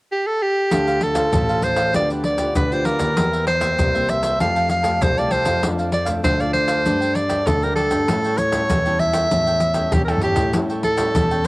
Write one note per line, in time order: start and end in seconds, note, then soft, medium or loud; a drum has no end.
0.12 0.28 G4 medium
0.27 0.44 A4 medium
0.42 1.05 G4 medium
0.71 1.24 D2 medium
0.71 1.30 D3 soft
0.71 1.13 C4 soft
0.71 0.86 D4 soft
0.71 1.13 F4 soft
0.71 0.86 A4 soft
0.71 1.13 A4 medium
0.71 0.86 C5 soft
0.71 0.86 F5 soft
0.71 pandeiro medium
0.71 maracas medium
0.71 surdo medium
0.87 1.00 A4 soft
0.87 1.00 C5 soft
0.87 1.00 F5 medium
0.87 pandeiro soft
0.87 maracas soft
1.01 1.65 A4 medium
1.01 pandeiro soft
1.01 surdo soft
1.15 1.42 C4 soft
1.15 1.42 F4 medium
1.15 1.43 A4 medium
1.15 1.31 A4 medium
1.15 1.31 C5 medium
1.15 1.30 F5 medium
1.15 pandeiro medium
1.15 maracas medium
1.15 surdo soft
1.32 1.94 A1 medium
1.32 1.91 A2 soft
1.32 1.47 D4 soft
1.32 1.47 A4 soft
1.32 1.47 C5 medium
1.32 1.48 F5 soft
1.32 pandeiro medium
1.32 maracas medium
1.32 surdo medium
1.49 1.90 C4 medium
1.49 1.90 F4 medium
1.49 1.90 A4 medium
1.49 1.77 A4 soft
1.49 1.76 C5 medium
1.49 1.75 F5 medium
1.49 pandeiro soft
1.49 maracas soft
1.62 1.94 C5 medium
1.62 pandeiro soft
1.62 maracas medium
1.62 surdo soft
1.76 1.93 A4 soft
1.76 1.92 C5 medium
1.76 1.92 F5 medium
1.76 pandeiro medium
1.76 maracas medium
1.94 2.47 D2 medium
1.94 2.52 D3 medium
1.94 2.23 B3 medium
1.94 2.08 F4 soft
1.94 2.23 F4 medium
1.94 2.09 G4 soft
1.94 2.23 G4 medium
1.94 2.09 B4 soft
1.94 2.09 D5 soft
1.94 2.09 D5 medium
1.94 pandeiro medium
1.94 maracas medium
1.94 surdo medium
2.10 2.23 G4 soft
2.10 2.23 B4 soft
2.10 2.23 D5 medium
2.10 pandeiro soft
2.10 maracas soft
2.24 2.54 D5 medium
2.24 muted cavaquinho stroke soft
2.24 pandeiro soft
2.38 2.65 B3 medium
2.38 2.65 F4 medium
2.38 2.65 G4 medium
2.38 2.69 G4 soft
2.38 2.69 B4 soft
2.38 2.69 D5 medium
2.38 pandeiro medium
2.38 maracas medium
2.38 surdo soft
2.55 2.95 D2 medium
2.55 3.14 D3 soft
2.55 2.74 B4 medium
2.55 pandeiro medium
2.55 maracas medium
2.55 surdo medium
2.72 3.12 B3 soft
2.72 3.13 F4 medium
2.72 3.13 G4 medium
2.72 2.84 G4 soft
2.72 2.85 B4 soft
2.72 2.87 C5 medium
2.72 2.85 D5 soft
2.72 pandeiro soft
2.72 maracas soft
2.85 3.00 F4 medium
2.85 3.00 G4 medium
2.85 3.47 A#4 medium
2.85 2.99 B4 medium
2.85 2.98 D5 medium
2.85 pandeiro medium
2.99 3.13 D#2 medium
2.99 3.15 G4 soft
2.99 3.15 B4 medium
2.99 3.15 D5 medium
2.99 pandeiro medium
2.99 maracas medium
2.99 surdo soft
3.17 3.69 E2 medium
3.17 3.76 E3 soft
3.17 3.46 A#3 soft
3.17 3.46 C4 medium
3.17 3.47 G4 soft
3.17 3.31 A#4 soft
3.17 3.31 C5 soft
3.17 3.32 E5 soft
3.17 pandeiro medium
3.17 maracas medium
3.17 surdo soft
3.33 3.46 C5 soft
3.33 3.46 E5 medium
3.33 pandeiro soft
3.33 maracas soft
3.47 4.11 C5 medium
3.47 muted cavaquinho stroke soft
3.47 pandeiro medium
3.61 3.88 A#3 medium
3.61 3.88 C4 medium
3.61 3.88 G4 medium
3.61 3.77 C5 soft
3.61 3.76 E5 medium
3.61 pandeiro medium
3.61 maracas medium
3.61 surdo soft
3.78 4.40 C2 medium
3.78 4.37 E3 soft
3.78 3.93 A#4 soft
3.78 3.93 C5 soft
3.78 3.93 E5 soft
3.78 pandeiro medium
3.78 maracas medium
3.78 surdo medium
3.94 4.36 A#3 medium
3.94 4.36 C4 medium
3.94 4.36 G4 medium
3.94 4.22 C5 medium
3.94 4.20 E5 medium
3.94 pandeiro soft
3.94 maracas soft
4.09 4.40 E5 medium
4.09 pandeiro soft
4.09 maracas medium
4.09 surdo soft
4.22 4.38 C5 medium
4.22 4.37 E5 medium
4.22 pandeiro medium
4.22 maracas medium
4.39 4.92 F2 medium
4.39 4.98 F3 soft
4.39 4.81 A3 medium
4.39 4.82 C4 medium
4.39 4.54 G4 soft
4.39 4.82 G4 medium
4.39 4.54 A4 soft
4.39 4.54 F5 soft
4.39 4.69 F5 medium
4.39 4.54 A5 medium
4.39 pandeiro medium
4.39 maracas medium
4.39 surdo medium
4.55 4.69 G4 soft
4.55 4.69 F5 soft
4.55 4.69 A5 medium
4.55 pandeiro soft
4.55 maracas soft
4.69 5.04 F5 medium
4.69 muted cavaquinho stroke soft
4.69 pandeiro soft
4.69 maracas medium
4.83 5.11 A3 soft
4.83 5.11 C4 medium
4.83 5.11 G4 medium
4.83 5.15 G4 soft
4.83 5.14 F5 soft
4.83 5.14 A5 medium
4.83 pandeiro medium
4.83 maracas medium
4.83 surdo soft
5.02 5.41 C2 medium
5.02 5.60 C3 soft
5.02 5.20 C5 medium
5.02 pandeiro medium
5.02 maracas medium
5.02 surdo medium
5.17 5.59 A3 soft
5.17 5.59 C4 soft
5.17 5.30 G4 soft
5.17 5.59 G4 medium
5.17 5.33 D5 medium
5.17 5.30 F5 soft
5.17 5.30 A5 soft
5.17 pandeiro soft
5.17 maracas soft
5.30 5.45 G4 medium
5.30 5.45 A4 medium
5.30 5.66 C5 medium
5.30 5.44 F5 medium
5.30 5.43 A5 medium
5.30 pandeiro soft
5.44 5.59 F2 medium
5.44 5.61 G4 medium
5.44 5.60 F5 medium
5.44 5.60 A5 medium
5.44 pandeiro medium
5.44 maracas medium
5.44 surdo soft
5.62 6.15 F2 medium
5.62 6.21 F2 medium
5.62 5.92 F3 soft
5.62 5.92 A3 soft
5.62 5.76 D4 soft
5.62 5.92 D4 medium
5.62 5.77 A4 soft
5.62 5.77 D5 medium
5.62 5.77 F5 soft
5.62 pandeiro medium
5.62 maracas medium
5.62 surdo medium
5.78 5.91 A4 soft
5.78 5.91 D5 soft
5.78 5.91 F5 medium
5.78 pandeiro soft
5.78 maracas soft
5.91 6.07 D5 medium
5.91 muted cavaquinho stroke soft
5.91 pandeiro medium
6.05 6.34 F3 soft
6.05 6.34 A3 medium
6.05 6.34 D4 medium
6.05 6.22 A4 soft
6.05 6.22 D5 medium
6.05 6.21 F5 medium
6.05 pandeiro medium
6.05 maracas medium
6.05 surdo soft
6.23 6.86 D2 medium
6.23 6.83 F2 soft
6.23 6.38 D4 soft
6.23 6.38 A4 medium
6.23 6.42 C5 medium
6.23 6.38 D5 soft
6.23 6.38 F5 medium
6.23 pandeiro medium
6.23 maracas medium
6.23 surdo medium
6.40 6.81 F3 medium
6.40 6.81 A3 medium
6.40 6.82 D4 medium
6.40 6.67 A4 soft
6.40 6.53 D5 medium
6.40 6.67 D5 medium
6.40 6.66 F5 medium
6.40 pandeiro soft
6.40 maracas soft
6.53 7.16 C5 medium
6.53 pandeiro soft
6.53 surdo soft
6.67 6.83 A4 soft
6.67 6.83 D5 medium
6.67 6.83 F5 medium
6.67 pandeiro medium
6.67 maracas medium
6.85 7.38 G2 medium
6.85 7.44 G2 medium
6.85 7.15 G3 medium
6.85 7.15 A3 medium
6.85 6.99 D4 soft
6.85 7.15 D4 medium
6.85 6.99 A4 medium
6.85 7.00 D5 soft
6.85 6.99 G5 medium
6.85 pandeiro medium
6.85 maracas medium
6.85 surdo soft
7.01 7.14 A4 soft
7.01 7.14 D5 soft
7.01 7.14 G5 medium
7.01 pandeiro soft
7.01 maracas soft
7.15 7.48 D5 medium
7.15 muted cavaquinho stroke soft
7.15 pandeiro soft
7.29 7.56 G3 medium
7.29 7.57 A3 medium
7.29 7.57 D4 medium
7.29 7.61 A4 soft
7.29 7.60 D5 soft
7.29 7.60 G5 medium
7.29 pandeiro medium
7.29 maracas medium
7.29 surdo soft
7.47 7.86 D2 medium
7.47 8.06 D3 soft
7.47 7.65 A4 medium
7.47 pandeiro medium
7.47 maracas medium
7.47 surdo medium
7.63 8.04 G3 medium
7.63 8.04 A3 medium
7.63 8.04 D4 medium
7.63 7.75 A4 soft
7.63 7.75 A#4 medium
7.63 7.76 D5 soft
7.63 7.76 G5 soft
7.63 pandeiro soft
7.63 maracas soft
7.76 7.91 D4 medium
7.76 8.40 A4 medium
7.76 7.91 A4 medium
7.76 7.90 D5 medium
7.76 7.89 G5 medium
7.76 pandeiro soft
7.91 8.05 G2 medium
7.91 8.07 A4 soft
7.91 8.06 D5 medium
7.91 8.06 G5 medium
7.91 pandeiro medium
7.91 maracas medium
7.91 surdo soft
8.08 8.61 A2 medium
8.08 8.67 A2 soft
8.08 8.37 G3 soft
8.08 8.37 C#4 medium
8.08 8.38 E4 medium
8.08 8.22 G4 soft
8.08 8.23 A4 soft
8.08 8.23 C#5 soft
8.08 8.23 G5 soft
8.08 pandeiro medium
8.08 maracas medium
8.08 surdo soft
8.24 8.37 A4 soft
8.24 8.37 C#5 soft
8.24 8.38 G5 medium
8.24 pandeiro soft
8.24 maracas soft
8.38 9.01 C#5 medium
8.38 muted cavaquinho stroke soft
8.38 pandeiro soft
8.38 maracas medium
8.38 surdo soft
8.52 8.79 G3 medium
8.52 8.79 C#4 medium
8.52 8.79 E4 medium
8.52 8.68 A4 soft
8.52 8.68 C#5 medium
8.52 8.67 G5 medium
8.52 pandeiro medium
8.52 maracas medium
8.52 surdo soft
8.70 9.22 E2 medium
8.70 9.28 E3 soft
8.70 8.84 G4 soft
8.70 8.84 A4 soft
8.70 8.84 C#5 soft
8.70 8.84 G5 medium
8.70 pandeiro medium
8.70 maracas medium
8.70 surdo medium
8.85 9.27 G3 medium
8.85 9.27 C#4 medium
8.85 9.27 E4 medium
8.85 9.14 A4 medium
8.85 9.13 C#5 medium
8.85 9.12 G5 medium
8.85 pandeiro soft
8.85 maracas soft
8.99 9.94 E5 medium
8.99 pandeiro soft
8.99 surdo soft
9.13 9.29 A4 soft
9.13 9.29 C#5 medium
9.13 9.29 G5 medium
9.13 pandeiro medium
9.13 maracas medium
9.31 9.84 E2 medium
9.31 9.90 A2 medium
9.31 9.72 G3 soft
9.31 9.73 C#4 soft
9.31 9.73 E4 medium
9.31 9.45 G4 soft
9.31 9.45 A4 soft
9.31 9.46 C#5 soft
9.31 9.46 G5 soft
9.31 pandeiro medium
9.31 maracas medium
9.31 surdo soft
9.47 9.60 A4 soft
9.47 9.60 C#5 soft
9.47 9.60 G5 medium
9.47 pandeiro soft
9.47 maracas soft
9.60 muted cavaquinho stroke soft
9.60 pandeiro soft
9.60 maracas soft
9.74 10.02 G3 medium
9.74 10.02 C#4 medium
9.74 10.02 E4 medium
9.74 10.06 A4 soft
9.74 10.06 C#5 soft
9.74 10.05 G5 soft
9.74 pandeiro medium
9.74 maracas medium
9.74 surdo soft
9.92 10.32 E2 medium
9.92 10.51 E3 soft
9.92 10.04 G4 medium
9.92 pandeiro medium
9.92 maracas medium
9.92 surdo loud
10.04 10.11 A#4 medium
10.04 10.21 G5 soft
10.04 pandeiro soft
10.04 tamborim medium
10.04 maracas soft
10.09 10.50 G3 soft
10.09 10.50 C#4 medium
10.09 10.50 E4 medium
10.09 10.20 A4 soft
10.09 10.22 A4 medium
10.09 10.21 C#5 soft
10.18 10.36 G4 medium
10.18 10.35 A4 medium
10.18 surdo medium
10.18 pandeiro medium
10.22 10.55 G4 medium
10.22 10.35 C#5 medium
10.22 10.34 G5 medium
10.35 10.50 A2 medium
10.35 10.52 A4 medium
10.35 10.51 C#5 medium
10.35 10.51 G5 medium
10.35 pandeiro medium
10.35 maracas medium
10.35 surdo medium
10.53 11.13 A2 soft
10.53 11.06 A2 medium
10.53 10.83 G3 soft
10.53 10.83 C#4 medium
10.53 10.83 E4 medium
10.53 10.68 G4 soft
10.53 10.68 A4 soft
10.53 10.68 C#5 soft
10.53 10.68 G5 soft
10.53 pandeiro medium
10.53 maracas medium
10.53 surdo medium
10.69 10.82 A4 soft
10.69 10.83 C#5 soft
10.69 10.83 G5 soft
10.69 pandeiro soft
10.69 maracas soft
10.83 11.47 A4 medium
10.83 muted cavaquinho stroke soft
10.83 pandeiro soft
10.83 surdo soft
10.97 11.25 G3 medium
10.97 11.25 C#4 medium
10.97 11.25 E4 medium
10.97 11.14 A4 soft
10.97 11.13 C#5 medium
10.97 11.13 G5 medium
10.97 pandeiro medium
10.97 maracas medium
10.97 surdo soft
11.15 11.47 E2 medium
11.15 11.47 E3 soft
11.15 11.29 G4 soft
11.15 11.30 A4 medium
11.15 11.30 C#5 soft
11.15 11.30 G5 medium
11.15 pandeiro medium
11.15 maracas medium
11.15 surdo medium
11.31 11.47 G3 medium
11.31 11.47 C#4 medium
11.31 11.47 E4 medium
11.31 11.47 A4 soft
11.31 11.47 C#5 medium
11.31 11.47 G5 medium
11.31 pandeiro soft
11.31 maracas soft